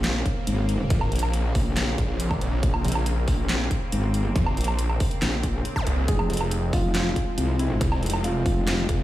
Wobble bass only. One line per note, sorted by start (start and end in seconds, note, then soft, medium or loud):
0.00 0.24 A#1 medium
0.47 0.89 G#1 loud
1.55 1.97 A#1 loud
2.63 2.83 A#1 medium
3.28 3.69 A#1 loud
3.92 4.34 G#1 loud
5.22 5.63 A#1 loud
6.08 6.28 F1 medium
6.73 7.15 F1 loud
7.38 7.79 C2 loud
8.46 8.87 F1 loud